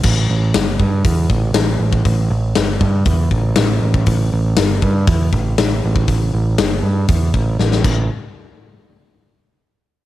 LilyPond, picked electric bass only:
\new Staff \with { instrumentName = "Picked electric bass" } { \clef bass \time 4/4 \key c \lydian \tempo 4 = 119 a,,8 a,,8 g,,8 g,8 e,8 a,,8 a,,8 a,,8 | a,,8 a,,8 g,,8 g,8 e,8 a,,8 a,,8 a,,8 | a,,8 a,,8 g,,8 g,8 e,8 a,,8 a,,8 a,,8 | a,,8 a,,8 g,,8 g,8 e,8 a,,8 a,,8 a,,8 |
r1 | }